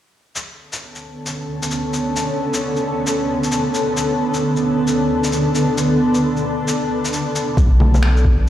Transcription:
0.35 D3 B3 C#4 A4, shaker
0.72 shaker
0.95 shaker
1.26 shaker
1.62 shaker
1.71 shaker
1.93 shaker
2.16 shaker
2.54 shaker
2.76 shaker
3.07 shaker
3.43 shaker
3.52 shaker
3.74 shaker
3.96 D4, shaker
4.34 shaker
4.56 shaker
4.87 shaker
5.24 shaker
5.32 shaker
5.55 shaker
5.78 shaker
6.14 shaker
6.37 shaker
6.68 shaker
7.05 shaker
7.13 shaker
7.35 shaker
7.57 B1 D3 B3 C#4 A4, kick, shaker
7.80 low bongo
7.94 low bongo, shaker
8.03 finger snap
8.17 shaker
8.25 kick

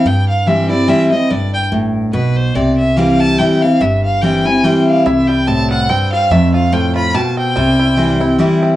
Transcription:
0.05 G2 G5
0.28 F5
0.46 E3 G3 C4 E4 E5
0.69 C4 E4 D5
0.88 E3 G3 C4 E4 E5
1.11 C4 E4 D#5
1.30 G1 G2 D5
1.54 G5
1.72 A1 A2
2.13 B1 B2 B4
2.37 C5
2.55 C2 C3 D5
2.78 E5
2.97 E3 G3 C4 E4 F5
3.20 A5
3.38 E3 G3 C4 E4 G5
3.61 C4 E4 F5
3.80 G1 G2 E5
4.04 F5
4.21 E3 G3 C4 E4 G5
4.45 C4 E4 G#5
4.63 E3 G3 C4 E4 G5
4.87 F5
5.05 C2 C3 E4 E5
5.27 G3 G5
5.47 A2 C4 A5
5.70 G3 F#5
5.89 G2 C4 G5
6.12 G3 F5
6.30 F2 A3 E5
6.54 F4 F5
6.73 A2 F3 G5
6.96 F4 B5
7.15 B2 G4 A5
7.37 C4 G5
7.56 C2 C3 G3
7.80 E4
7.97 E3 G3 C4 E4
8.20 C4 E4
8.39 E3 G3 C4 E4 G4
8.63 C4

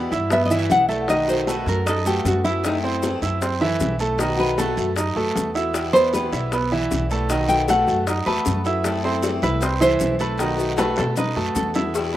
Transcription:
Already playing: B2 E3 G3 B3 E4
0.11 G2 G3 B3 E4 E5 E6, high bongo, short guiro, maracas
0.30 B3 B4 E5 B5, muted steel-string acoustic guitar stroke, high bongo, long guiro, maracas
0.46 D#5
0.50 E3 G3 B3 E4 E5, high bongo, maracas
0.59 E5
0.70 B1 F#5, high bongo, low bongo, short guiro, maracas
0.89 G3 A3 B3 E4 A4 E5 A5, short guiro, maracas
1.08 B2 D#3 A3 B3 D#4 F#4 D#5, high bongo, long guiro, maracas
1.28 D#3 A3 B3 F#4 C5, high bongo, maracas
1.47 B2 D#3 A3 B3 F#4 A4 B4 A5, high bongo, short guiro, maracas
1.66 F#2 A3 B3 F#4 A#4, high bongo, short guiro, maracas
1.86 D#4 A4 D#5 D#6, muted steel-string acoustic guitar stroke, high bongo, long guiro, maracas
2.06 A3 B3 F#4 G4 A4 A5, high bongo, maracas
2.25 F#2 F#4, high bongo, low bongo, short guiro, maracas
2.44 A3 B3 E4 F#4 E5 E6, short guiro, maracas
2.63 E3 A3 C4 D#4 E4, high bongo, long guiro, maracas
2.84 A3 C4 E4 C5 C6, high bongo
3.03 E3 A3 C4 E4, high bongo, short guiro, maracas
3.22 F#2 A3 C4 E4 E5 E6, high bongo, short guiro, maracas
3.41 C4 C5 C6, muted steel-string acoustic guitar stroke, high bongo, long guiro, maracas
3.59 E3 A3 C4 E4 E5, high bongo
3.80 B1, high bongo, low bongo, short guiro, maracas
3.99 A3 C4 E4 A4 A5, short guiro, maracas
4.18 B2 D#3 A3 B3 D#4 F#4 D#5, high bongo, long guiro, maracas
4.37 D#3 A3 B3 F#4 B4, high bongo
4.57 B2 D#3 A3 B3 F#4 A4 A5, high bongo, short guiro, maracas
4.76 F#2 A3 B3 F#4, high bongo, short guiro, maracas
4.95 D#4 D#5 D#6, muted steel-string acoustic guitar stroke, high bongo, long guiro, maracas
5.15 F#2 A3 B3 F#4 A4 A5, high bongo
5.35 E2, high bongo, low bongo, short guiro, maracas
5.54 A3 B3 E4 F#4 E5 E6, short guiro, maracas
5.73 B2 E3 G3 B3 E4, high bongo, long guiro, maracas
5.93 E3 G3 B3 E4 B4 C5 B5, high bongo, maracas
6.13 B2 E3 G3 B3 E4 B4, high bongo, short guiro, maracas
6.32 B1 G3 B3 E4 E5 E6, high bongo, short guiro, maracas
6.52 B3 B4 B5, muted steel-string acoustic guitar stroke, high bongo, long guiro, maracas
6.71 E3 G3 B3 E4 E5, high bongo
6.91 B1, high bongo, low bongo, short guiro, maracas
7.09 G3 A3 B3 E4 A4 A5, short guiro, maracas
7.29 B2 D#3 A3 B3 D#4 F#4 D#5, high bongo, long guiro, maracas
7.47 D#3 A3 B3 F#4 G5, high bongo, maracas
7.68 B2 D#3 A3 B3 F#4 A4 F#5 A5, high bongo, short guiro, maracas
7.87 F#2 A3 B3 F#4, high bongo, short guiro, maracas
8.07 D#4 D#5 D#6, muted steel-string acoustic guitar stroke, high bongo, long guiro, maracas
8.26 E2 A3 B3 F#4 A4 B4 A5, high bongo
8.45 F#2, high bongo, low bongo, short guiro, maracas
8.64 A3 B3 E4 F#4 E5 E6, short guiro, maracas
8.84 E3 A3 C4 E4 A4, high bongo, long guiro, maracas
9.04 A3 C4 E4 C5 C6, high bongo
9.22 E3 A3 C4 E4, high bongo, short guiro, maracas
9.42 C2 A3 C4 E4 B4 E5 E6, high bongo, short guiro, maracas
9.61 C4 C5 C6, muted steel-string acoustic guitar stroke, high bongo, long guiro, maracas
9.80 E3 A3 C4 E4 C5 E5, high bongo, maracas
9.99 B1, high bongo, low bongo, short guiro, maracas
10.19 A3 C4 E4 A4 B4 A5, short guiro, maracas
10.37 B2 D#3 A3 B3 D#4 F#4 D#5, high bongo, long guiro, maracas
10.56 D#3 A3 B3 F#4, high bongo, maracas
10.76 B2 D#3 A3 B3 F#4 A4 B4 A5, high bongo, short guiro, maracas
10.96 B2 A3 B3 F#4 A4, high bongo, short guiro, maracas
11.16 D#4 B4 D#5 D#6, muted steel-string acoustic guitar stroke, low bongo, long guiro, maracas
11.36 F#2 A3 B3 F#4 A4 A5
11.55 E2 A4, low bongo, short guiro, maracas
11.74 A3 B3 E4 F#4 E5 E6, low bongo, short guiro, maracas
11.94 B2 E3 G3 B3 E4, cowbell, long guiro, maracas
12.13 E4

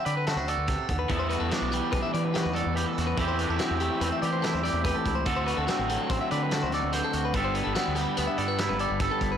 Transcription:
Already playing: D3 F#3 C4 F#4
0.05 D3 B4 D5, closed hi-hat
0.17 B4
0.27 F#4 A4, snare, closed hi-hat
0.36 D2 C5
0.48 A4 D5, closed hi-hat
0.57 D2
0.67 C3 B4, kick, snare, closed hi-hat
0.78 A4
0.89 D#2 D3, kick, closed hi-hat
0.99 B4
1.09 E2 E3 G3 B3 A4, kick, closed hi-hat
1.13 E4
1.19 C5
1.29 F#4 B4, closed hi-hat
1.40 E2 A4
1.50 D4 F#4, snare, closed hi-hat
1.61 B1
1.72 G3 G4, closed hi-hat
1.92 B1 D4 B4, kick, closed hi-hat
2.03 E5
2.14 E3 D5, closed hi-hat
2.24 B4
2.34 F#4 G4, snare, closed hi-hat
2.43 E2 B4
2.53 A4 D5, closed hi-hat
2.66 E2
2.75 E3 G4 B4, closed hi-hat
2.86 A4
2.98 E2 F#4, snare, closed hi-hat
3.07 B4
3.17 E2 E3 A3 C4 E4, kick, closed hi-hat
3.21 G4
3.28 C5
3.38 D4 B4, closed hi-hat
3.49 E2 E4 A4
3.59 C4 F#4, snare, closed hi-hat
3.71 E2
3.80 A3 G4, closed hi-hat
4.01 E2 C4 B4, closed hi-hat
4.12 E5
4.22 E3 G4 D5, closed hi-hat
4.33 C5
4.42 E4 A4, snare, closed hi-hat
4.53 E2 C5
4.64 G4 D5, snare, closed hi-hat
4.73 E2
4.84 E3 G4 B4, kick, closed hi-hat
4.95 A4
5.05 C#2 E4, kick, closed hi-hat
5.15 C5
5.26 D2 D3 A3 C4 A4, kick, closed hi-hat
5.30 F#4
5.37 C5
5.46 F#4 B4, closed hi-hat
5.57 D2 A4
5.67 C4 F#4, snare, closed hi-hat
5.79 A1
5.89 F#3 A4, closed hi-hat
6.10 A1 C4 C5, kick, closed hi-hat
6.21 E5
6.31 D3 B4 D5, closed hi-hat
6.43 B4
6.51 F#4 A4, snare, closed hi-hat
6.63 D2 C5
6.72 A4 D5, snare, closed hi-hat
6.83 D2
6.92 D3 B4 C5, snare, closed hi-hat
7.04 A4
7.13 D2 F#4, closed hi-hat
7.25 B4
7.33 G1 G2 D3 G3 B3 D4 G4 A4, kick, closed hi-hat
7.45 C5
7.55 E4 B4, closed hi-hat
7.64 G1 A4
7.75 B3 F#4, snare, closed hi-hat
7.88 D2
7.95 G3 G4, snare, closed hi-hat
8.17 D2 B3 B4, closed hi-hat
8.27 E5
8.38 G2 A4 D5, closed hi-hat
8.48 B4
8.58 E4 G4, snare, closed hi-hat
8.69 G1 B4
8.79 A4 D5, closed hi-hat
8.90 G1
9.00 G2 A4 B4, kick, snare, closed hi-hat
9.11 A4
9.21 G1 E4, kick, closed hi-hat
9.32 B4

